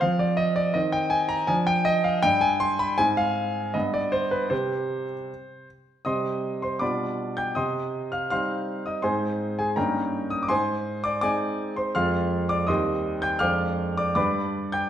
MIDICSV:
0, 0, Header, 1, 2, 480
1, 0, Start_track
1, 0, Key_signature, -3, "minor"
1, 0, Tempo, 741656
1, 12, Time_signature, 2, 2, 24, 8
1, 1932, Tempo, 767263
1, 3852, Tempo, 751880
1, 5292, Tempo, 729040
1, 8172, Tempo, 745342
1, 9596, End_track
2, 0, Start_track
2, 0, Title_t, "Grand piano"
2, 0, Program_c, 0, 0
2, 5, Note_on_c, 0, 77, 85
2, 12, Note_on_c, 0, 53, 58
2, 15, Note_on_c, 0, 60, 42
2, 125, Note_on_c, 0, 74, 76
2, 127, Note_off_c, 0, 77, 0
2, 155, Control_c, 0, 64, 127
2, 238, Note_on_c, 0, 75, 81
2, 246, Note_off_c, 0, 74, 0
2, 361, Note_on_c, 0, 74, 80
2, 362, Note_off_c, 0, 75, 0
2, 392, Note_off_c, 0, 53, 0
2, 463, Note_off_c, 0, 60, 0
2, 477, Note_on_c, 0, 75, 80
2, 481, Note_on_c, 0, 60, 44
2, 484, Note_off_c, 0, 74, 0
2, 484, Note_on_c, 0, 51, 59
2, 492, Control_c, 0, 64, 0
2, 598, Note_on_c, 0, 79, 84
2, 602, Note_off_c, 0, 75, 0
2, 605, Control_c, 0, 64, 127
2, 712, Note_on_c, 0, 80, 85
2, 722, Note_off_c, 0, 79, 0
2, 832, Note_on_c, 0, 82, 85
2, 839, Note_off_c, 0, 80, 0
2, 869, Note_off_c, 0, 51, 0
2, 938, Note_off_c, 0, 60, 0
2, 953, Note_on_c, 0, 80, 83
2, 959, Note_off_c, 0, 82, 0
2, 959, Note_on_c, 0, 53, 64
2, 961, Note_on_c, 0, 62, 41
2, 975, Control_c, 0, 64, 0
2, 1079, Note_on_c, 0, 79, 91
2, 1080, Note_off_c, 0, 80, 0
2, 1112, Control_c, 0, 64, 127
2, 1196, Note_on_c, 0, 75, 89
2, 1203, Note_off_c, 0, 79, 0
2, 1321, Note_on_c, 0, 77, 81
2, 1322, Note_off_c, 0, 75, 0
2, 1348, Note_off_c, 0, 53, 0
2, 1420, Note_off_c, 0, 62, 0
2, 1440, Note_on_c, 0, 79, 102
2, 1446, Note_off_c, 0, 77, 0
2, 1448, Note_on_c, 0, 43, 62
2, 1453, Note_on_c, 0, 62, 43
2, 1454, Control_c, 0, 64, 0
2, 1560, Note_on_c, 0, 80, 91
2, 1566, Note_off_c, 0, 79, 0
2, 1580, Control_c, 0, 64, 127
2, 1683, Note_on_c, 0, 84, 96
2, 1686, Note_off_c, 0, 80, 0
2, 1807, Note_on_c, 0, 83, 91
2, 1808, Note_off_c, 0, 84, 0
2, 1836, Note_off_c, 0, 43, 0
2, 1909, Note_off_c, 0, 62, 0
2, 1926, Note_on_c, 0, 80, 100
2, 1931, Note_off_c, 0, 83, 0
2, 1933, Note_on_c, 0, 60, 45
2, 1934, Note_on_c, 0, 44, 64
2, 1941, Control_c, 0, 64, 0
2, 2047, Note_off_c, 0, 80, 0
2, 2048, Control_c, 0, 64, 127
2, 2049, Note_on_c, 0, 77, 89
2, 2312, Note_off_c, 0, 44, 0
2, 2382, Note_off_c, 0, 60, 0
2, 2403, Note_on_c, 0, 75, 70
2, 2406, Note_off_c, 0, 77, 0
2, 2410, Note_on_c, 0, 43, 55
2, 2411, Note_on_c, 0, 59, 44
2, 2415, Control_c, 0, 64, 0
2, 2525, Note_off_c, 0, 75, 0
2, 2527, Note_on_c, 0, 74, 80
2, 2543, Control_c, 0, 64, 127
2, 2642, Note_on_c, 0, 72, 77
2, 2647, Note_off_c, 0, 74, 0
2, 2762, Note_on_c, 0, 71, 73
2, 2766, Note_off_c, 0, 72, 0
2, 2795, Note_off_c, 0, 43, 0
2, 2867, Note_off_c, 0, 59, 0
2, 2879, Note_on_c, 0, 72, 71
2, 2883, Note_on_c, 0, 48, 50
2, 2884, Note_on_c, 0, 67, 40
2, 2886, Note_on_c, 0, 60, 41
2, 2888, Note_off_c, 0, 71, 0
2, 2898, Control_c, 0, 64, 0
2, 3005, Control_c, 0, 64, 127
2, 3225, Note_off_c, 0, 48, 0
2, 3275, Note_off_c, 0, 67, 0
2, 3276, Note_off_c, 0, 60, 0
2, 3379, Control_c, 0, 64, 0
2, 3610, Note_off_c, 0, 72, 0
2, 3848, Note_on_c, 0, 87, 66
2, 3853, Note_on_c, 0, 75, 49
2, 3855, Note_on_c, 0, 48, 43
2, 3856, Note_on_c, 0, 55, 31
2, 3858, Note_on_c, 0, 84, 49
2, 3859, Note_on_c, 0, 60, 31
2, 3864, Note_on_c, 0, 67, 32
2, 3962, Control_c, 0, 64, 127
2, 4191, Note_off_c, 0, 75, 0
2, 4193, Note_off_c, 0, 84, 0
2, 4213, Note_off_c, 0, 87, 0
2, 4215, Note_on_c, 0, 84, 58
2, 4222, Note_on_c, 0, 72, 41
2, 4313, Note_off_c, 0, 55, 0
2, 4314, Note_off_c, 0, 60, 0
2, 4317, Note_off_c, 0, 67, 0
2, 4324, Note_off_c, 0, 48, 0
2, 4325, Note_on_c, 0, 86, 65
2, 4331, Note_on_c, 0, 83, 49
2, 4332, Note_off_c, 0, 72, 0
2, 4334, Note_on_c, 0, 47, 45
2, 4334, Note_on_c, 0, 55, 34
2, 4335, Note_on_c, 0, 74, 50
2, 4336, Note_on_c, 0, 62, 33
2, 4337, Note_off_c, 0, 84, 0
2, 4341, Note_on_c, 0, 65, 34
2, 4346, Control_c, 0, 64, 0
2, 4472, Control_c, 0, 64, 127
2, 4669, Note_off_c, 0, 83, 0
2, 4671, Note_off_c, 0, 74, 0
2, 4691, Note_off_c, 0, 86, 0
2, 4691, Note_on_c, 0, 91, 67
2, 4699, Note_on_c, 0, 79, 50
2, 4791, Note_off_c, 0, 55, 0
2, 4792, Note_off_c, 0, 62, 0
2, 4794, Note_off_c, 0, 65, 0
2, 4802, Note_off_c, 0, 47, 0
2, 4807, Note_on_c, 0, 87, 67
2, 4810, Note_off_c, 0, 79, 0
2, 4814, Note_off_c, 0, 91, 0
2, 4815, Note_on_c, 0, 48, 50
2, 4815, Note_on_c, 0, 75, 48
2, 4817, Note_on_c, 0, 84, 52
2, 4822, Control_c, 0, 64, 0
2, 4943, Control_c, 0, 64, 127
2, 5149, Note_off_c, 0, 75, 0
2, 5150, Note_off_c, 0, 84, 0
2, 5169, Note_on_c, 0, 89, 66
2, 5171, Note_off_c, 0, 87, 0
2, 5177, Note_on_c, 0, 77, 49
2, 5278, Note_off_c, 0, 48, 0
2, 5279, Note_off_c, 0, 89, 0
2, 5284, Note_off_c, 0, 77, 0
2, 5288, Note_on_c, 0, 89, 76
2, 5294, Note_on_c, 0, 77, 61
2, 5295, Note_on_c, 0, 55, 36
2, 5295, Note_on_c, 0, 84, 59
2, 5298, Note_on_c, 0, 63, 40
2, 5300, Note_on_c, 0, 60, 37
2, 5302, Control_c, 0, 64, 0
2, 5630, Note_off_c, 0, 77, 0
2, 5631, Note_off_c, 0, 84, 0
2, 5652, Note_off_c, 0, 89, 0
2, 5652, Note_on_c, 0, 87, 54
2, 5659, Note_on_c, 0, 75, 46
2, 5750, Note_off_c, 0, 55, 0
2, 5751, Note_off_c, 0, 63, 0
2, 5752, Note_off_c, 0, 60, 0
2, 5762, Note_on_c, 0, 84, 70
2, 5768, Note_on_c, 0, 72, 56
2, 5769, Note_off_c, 0, 75, 0
2, 5769, Note_on_c, 0, 44, 53
2, 5770, Note_on_c, 0, 56, 40
2, 5771, Note_on_c, 0, 80, 51
2, 5774, Note_off_c, 0, 87, 0
2, 5774, Note_on_c, 0, 60, 37
2, 5779, Note_on_c, 0, 63, 37
2, 5898, Control_c, 0, 64, 127
2, 6106, Note_off_c, 0, 72, 0
2, 6107, Note_off_c, 0, 80, 0
2, 6128, Note_off_c, 0, 84, 0
2, 6132, Note_on_c, 0, 80, 64
2, 6140, Note_on_c, 0, 68, 49
2, 6224, Note_off_c, 0, 56, 0
2, 6226, Note_off_c, 0, 60, 0
2, 6229, Note_off_c, 0, 63, 0
2, 6236, Note_off_c, 0, 44, 0
2, 6247, Note_on_c, 0, 82, 68
2, 6248, Note_off_c, 0, 68, 0
2, 6252, Note_off_c, 0, 80, 0
2, 6253, Note_on_c, 0, 70, 51
2, 6254, Note_on_c, 0, 43, 53
2, 6254, Note_on_c, 0, 58, 37
2, 6255, Note_on_c, 0, 79, 56
2, 6258, Note_on_c, 0, 61, 39
2, 6262, Control_c, 0, 64, 0
2, 6262, Note_on_c, 0, 63, 37
2, 6381, Control_c, 0, 64, 127
2, 6586, Note_off_c, 0, 70, 0
2, 6587, Note_off_c, 0, 79, 0
2, 6605, Note_on_c, 0, 87, 71
2, 6608, Note_off_c, 0, 82, 0
2, 6683, Note_off_c, 0, 87, 0
2, 6686, Note_on_c, 0, 86, 59
2, 6705, Note_off_c, 0, 58, 0
2, 6707, Note_off_c, 0, 61, 0
2, 6709, Note_off_c, 0, 63, 0
2, 6717, Note_off_c, 0, 43, 0
2, 6724, Note_on_c, 0, 84, 79
2, 6731, Note_off_c, 0, 86, 0
2, 6731, Note_on_c, 0, 44, 53
2, 6731, Note_on_c, 0, 80, 62
2, 6735, Note_on_c, 0, 72, 59
2, 6740, Control_c, 0, 64, 0
2, 6875, Control_c, 0, 64, 127
2, 7067, Note_off_c, 0, 80, 0
2, 7069, Note_off_c, 0, 72, 0
2, 7087, Note_on_c, 0, 86, 76
2, 7089, Note_off_c, 0, 84, 0
2, 7097, Note_on_c, 0, 74, 59
2, 7194, Note_off_c, 0, 86, 0
2, 7198, Note_off_c, 0, 44, 0
2, 7200, Note_off_c, 0, 74, 0
2, 7204, Note_on_c, 0, 86, 85
2, 7210, Note_on_c, 0, 74, 64
2, 7211, Note_on_c, 0, 56, 42
2, 7213, Note_on_c, 0, 80, 63
2, 7215, Note_on_c, 0, 60, 44
2, 7218, Control_c, 0, 64, 0
2, 7218, Note_on_c, 0, 63, 48
2, 7546, Note_off_c, 0, 74, 0
2, 7547, Note_off_c, 0, 80, 0
2, 7566, Note_on_c, 0, 84, 61
2, 7568, Note_off_c, 0, 86, 0
2, 7575, Note_on_c, 0, 72, 49
2, 7665, Note_off_c, 0, 56, 0
2, 7667, Note_off_c, 0, 60, 0
2, 7669, Note_off_c, 0, 63, 0
2, 7681, Note_off_c, 0, 84, 0
2, 7685, Note_off_c, 0, 72, 0
2, 7687, Note_on_c, 0, 89, 81
2, 7691, Note_on_c, 0, 84, 61
2, 7692, Note_on_c, 0, 41, 59
2, 7693, Note_on_c, 0, 56, 42
2, 7693, Note_on_c, 0, 77, 66
2, 7696, Note_on_c, 0, 60, 45
2, 7703, Note_on_c, 0, 65, 44
2, 7801, Control_c, 0, 64, 127
2, 8027, Note_off_c, 0, 84, 0
2, 8028, Note_off_c, 0, 77, 0
2, 8046, Note_on_c, 0, 86, 78
2, 8051, Note_off_c, 0, 89, 0
2, 8053, Note_on_c, 0, 74, 57
2, 8148, Note_off_c, 0, 56, 0
2, 8149, Note_off_c, 0, 60, 0
2, 8153, Note_off_c, 0, 65, 0
2, 8159, Note_off_c, 0, 41, 0
2, 8160, Note_on_c, 0, 87, 65
2, 8165, Note_off_c, 0, 74, 0
2, 8169, Note_on_c, 0, 75, 54
2, 8169, Note_on_c, 0, 84, 53
2, 8170, Note_off_c, 0, 86, 0
2, 8170, Note_on_c, 0, 55, 44
2, 8171, Note_on_c, 0, 39, 58
2, 8172, Note_on_c, 0, 60, 40
2, 8174, Note_on_c, 0, 67, 43
2, 8182, Control_c, 0, 64, 0
2, 8319, Control_c, 0, 64, 127
2, 8501, Note_off_c, 0, 75, 0
2, 8501, Note_off_c, 0, 84, 0
2, 8517, Note_on_c, 0, 91, 79
2, 8522, Note_off_c, 0, 87, 0
2, 8525, Note_on_c, 0, 79, 63
2, 8620, Note_off_c, 0, 55, 0
2, 8621, Note_off_c, 0, 60, 0
2, 8622, Note_off_c, 0, 67, 0
2, 8627, Note_on_c, 0, 89, 88
2, 8632, Note_off_c, 0, 39, 0
2, 8635, Note_on_c, 0, 56, 42
2, 8635, Note_on_c, 0, 77, 62
2, 8635, Note_on_c, 0, 86, 59
2, 8636, Note_on_c, 0, 41, 55
2, 8638, Note_off_c, 0, 79, 0
2, 8640, Note_on_c, 0, 62, 41
2, 8642, Note_off_c, 0, 91, 0
2, 8646, Note_on_c, 0, 72, 40
2, 8652, Control_c, 0, 64, 0
2, 8785, Control_c, 0, 64, 127
2, 8977, Note_off_c, 0, 77, 0
2, 8977, Note_off_c, 0, 86, 0
2, 8999, Note_off_c, 0, 89, 0
2, 9003, Note_on_c, 0, 86, 75
2, 9009, Note_on_c, 0, 74, 56
2, 9098, Note_off_c, 0, 56, 0
2, 9100, Note_off_c, 0, 62, 0
2, 9103, Note_off_c, 0, 72, 0
2, 9107, Note_off_c, 0, 86, 0
2, 9109, Note_off_c, 0, 41, 0
2, 9114, Note_off_c, 0, 74, 0
2, 9117, Note_on_c, 0, 86, 78
2, 9121, Note_on_c, 0, 43, 58
2, 9122, Note_on_c, 0, 55, 41
2, 9124, Note_on_c, 0, 74, 62
2, 9124, Note_on_c, 0, 83, 62
2, 9128, Note_on_c, 0, 62, 37
2, 9131, Note_on_c, 0, 71, 40
2, 9137, Control_c, 0, 64, 0
2, 9258, Control_c, 0, 64, 127
2, 9464, Note_off_c, 0, 74, 0
2, 9464, Note_off_c, 0, 83, 0
2, 9486, Note_off_c, 0, 86, 0
2, 9486, Note_on_c, 0, 91, 75
2, 9493, Note_on_c, 0, 79, 60
2, 9584, Note_off_c, 0, 55, 0
2, 9587, Note_off_c, 0, 62, 0
2, 9588, Note_off_c, 0, 71, 0
2, 9594, Note_off_c, 0, 43, 0
2, 9596, Note_off_c, 0, 79, 0
2, 9596, Note_off_c, 0, 91, 0
2, 9596, End_track
0, 0, End_of_file